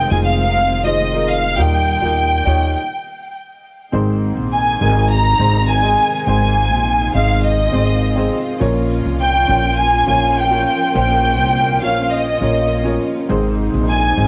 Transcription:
Already playing: upright piano C3 D#4 F4 G#4 A#4 C5, string section D#3 G#3 C4 F4, violin section G5
0.10 upright bass F1, upright piano D#4 F4 G#4 D#5, violin section G#5
0.25 violin section F5
0.40 violin section F5
0.84 upright piano D#4 F4 G#4 C5, violin section D#5
1.13 upright piano D#4 F4 G#4 A#4
1.29 violin section F5
1.58 upright bass D#2, upright piano A#2 D#4 F4 G4 A#4, string section G3 A#3, violin section G5
2.01 upright bass D#2, upright piano D#4 F4 G4 A#4
2.45 upright bass D#2, upright piano D#4 F4 G4 C#5
3.92 upright bass G#1, upright piano G#2 D#3 C4 D#4 G#4 C5, string section C3 D#3 G#3 D#4
4.37 upright bass A#1
4.53 violin section G#5
4.81 upright bass G#1, upright piano C4 D#4 G#4 A#4
5.12 violin section A#5
5.38 upright bass G#1, upright piano C4 D#4 G#4 C5
5.69 violin section G#5
5.82 upright piano C4 D#4 G#4 D#5
6.26 upright bass G#1, upright piano G#2 D#3 C4 D#4 G#4 C5, string section F4, violin section G#5
6.71 upright bass A#1
7.14 upright bass G#1, upright piano C4 D#4 G#4 D#5, violin section F5
7.45 violin section D#5
7.72 upright bass G#1, upright piano C4 D#4 G#4 C5
8.15 upright piano C4 D#4 G#4 C5
8.59 upright bass A#1, upright piano A#2 F3 C#4 F4 A#4 C#5, string section F3 A#3 C#4
9.06 upright bass C2
9.21 violin section G5
9.48 upright bass A#1, upright piano C#4 F4 A#4 C#5
9.80 violin section G#5
10.06 upright bass A#1, upright piano C#4 F4 A#4 C#5
10.38 violin section G5
10.51 upright piano C#4 F4 A#4 C#5
10.93 upright bass A#1, upright piano A#2 F3 C#4 F4 A#4 C5, violin section G5
11.39 upright bass C2
11.82 upright bass A#1, upright piano C#4 F4 A#4 C#5, violin section F5
12.14 violin section D#5
12.41 upright bass A#1, upright piano C#4 F4 A#4 C#5
12.84 upright piano C#4 F4 A#4 C#5
13.29 upright bass G#1, upright piano G#2 D#3 C4 D#4 G#4 C5, string section C3 D#3 G#3 D#4
13.74 upright bass A#1
13.89 violin section G#5
14.17 upright bass G#1, upright piano C4 D#4 G#4 D#5

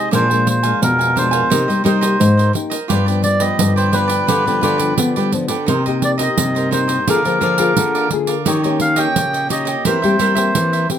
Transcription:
Already playing: nylon-string guitar G4, cavaquinho C5 D#5
0.11 nylon-string guitar A#2 F3 G#3 D4, cavaquinho D4 A#4 F5 G#5, melodica C5, pandeiro
0.30 nylon-string guitar F3 G#3 D4, cavaquinho A#4 F5 G#5, pandeiro
0.47 melodica C5, muted cavaquinho stroke, pandeiro
0.63 nylon-string guitar F3 G#3 D4, cavaquinho A#4 F5 G#5, pandeiro
0.82 nylon-string guitar F2 B2, melodica A#4, pandeiro
0.99 cavaquinho A#4 F5 G#5, pandeiro
1.16 nylon-string guitar F3 G#3 D4, cavaquinho D4 A#4 F5 G#5, melodica C5, pandeiro
1.31 cavaquinho A#4 F5 G#5, pandeiro
1.50 nylon-string guitar C3 A#3 D#4 G4, cavaquinho D#4 A#4 C5 D#5, pandeiro
1.68 nylon-string guitar G3, cavaquinho A#4 C5 D#5, pandeiro
1.84 nylon-string guitar G3 A#3 D#4 G4, cavaquinho D#4 A#4 C5 D#5, melodica C5, pandeiro
2.01 cavaquinho A#4 C5 D#5, pandeiro
2.20 nylon-string guitar G#2, pandeiro
2.37 cavaquinho A#4 C5 D#5, pandeiro
2.53 nylon-string guitar A#3 D#4 G4, muted cavaquinho stroke, pandeiro
2.70 cavaquinho A#4 C5 D#5, pandeiro
2.88 nylon-string guitar G2 F3 B3 D4, cavaquinho F4 G4 B4 D5, pandeiro
3.06 nylon-string guitar F3 B3 D4, cavaquinho G4 B4 D5, pandeiro
3.22 melodica D5, muted cavaquinho stroke, pandeiro
3.40 nylon-string guitar F3 B3, cavaquinho G4 B4, melodica D#5, pandeiro
3.59 nylon-string guitar G2 D3, pandeiro
3.76 cavaquinho G4 B4 D5, melodica C5, pandeiro
3.92 nylon-string guitar F3 B3 D4, cavaquinho F4 G4 B4 D5, melodica B4, pandeiro
4.08 cavaquinho G4 B4 D5, pandeiro
4.27 nylon-string guitar G2 D3, cavaquinho F4 G4 B4 D5, pandeiro
4.46 nylon-string guitar D3 F3 B3 D4, cavaquinho G4 B4 D5, pandeiro
4.61 nylon-string guitar D3, cavaquinho F4 G4 B4 D5, pandeiro
4.78 nylon-string guitar F3 B3 D4, cavaquinho G4 B4 D5, pandeiro
4.98 nylon-string guitar D3 B3, pandeiro
5.16 nylon-string guitar G3, cavaquinho G4 B4 D5, pandeiro
5.32 nylon-string guitar F3 B3 D4, muted cavaquinho stroke, pandeiro
5.48 nylon-string guitar D3, cavaquinho G4 B4 D5, pandeiro
5.66 nylon-string guitar C3 A#3 D#4 G4, cavaquinho D#4 A#4 C5 D#5, pandeiro
5.86 nylon-string guitar A#3 D#4 G4, cavaquinho A#4 C5 D#5, pandeiro
6.02 melodica D5, muted cavaquinho stroke, pandeiro
6.18 nylon-string guitar A#3 D#4 G4, cavaquinho A#4 C5 D#5, pandeiro
6.22 melodica D#5
6.38 nylon-string guitar G2 C3, pandeiro
6.55 cavaquinho A#4 C5 D#5, pandeiro
6.71 nylon-string guitar A#3 D#4 G4, cavaquinho D#4 A#4 C5 D#5, melodica C5, pandeiro
6.88 cavaquinho A#4 C5 D#5, pandeiro
7.07 nylon-string guitar D3 A#3 F4 G#4, cavaquinho G#4 A#4 D5 F5, melodica A#4, pandeiro
7.24 nylon-string guitar F3 A#3 F4 G#4, cavaquinho A#4 D5 F5, pandeiro
7.41 nylon-string guitar F3, cavaquinho G#4 A#4 D5 F5, pandeiro
7.58 nylon-string guitar A#3 F4 G#4, cavaquinho A#4 D5 F5, pandeiro
7.77 nylon-string guitar D3, pandeiro
7.95 cavaquinho A#4 D5 F5, pandeiro
8.11 nylon-string guitar A#3 F4 G#4, muted cavaquinho stroke, pandeiro
8.27 cavaquinho A#4 D5 F5, pandeiro
8.45 nylon-string guitar D#3 A#3 C#4 G4, cavaquinho D#4 G4 C#5 D#5, pandeiro
8.63 nylon-string guitar A#3 C#4 G4, cavaquinho G4 C#5 D#5, pandeiro
8.80 melodica F5, muted cavaquinho stroke, pandeiro
8.96 nylon-string guitar A#3 C#4 G4, cavaquinho G4 C#5 D#5, melodica G5, pandeiro
9.16 nylon-string guitar A#2 C#3, pandeiro
9.33 cavaquinho G4 C#5 D#5, pandeiro
9.49 nylon-string guitar A#3 C#4 G4, cavaquinho D#4 G4 C#5 D#5, melodica D#5, pandeiro
9.65 cavaquinho G4 C#5 D#5, pandeiro
9.85 nylon-string guitar E3 A#3 C4 G4, cavaquinho E4 A#4 C5 E5, melodica C5, pandeiro
10.02 nylon-string guitar G3 A#3 C4 G4, cavaquinho A#4 C5 E5, pandeiro
10.19 nylon-string guitar G3, cavaquinho E4 A#4 C5 E5, pandeiro
10.35 nylon-string guitar A#3 C4 G4, cavaquinho A#4 C5 E5, pandeiro
10.55 nylon-string guitar E3, pandeiro
10.73 cavaquinho A#4 C5 E5, pandeiro
10.90 nylon-string guitar A#3 C4 G4, muted cavaquinho stroke, pandeiro

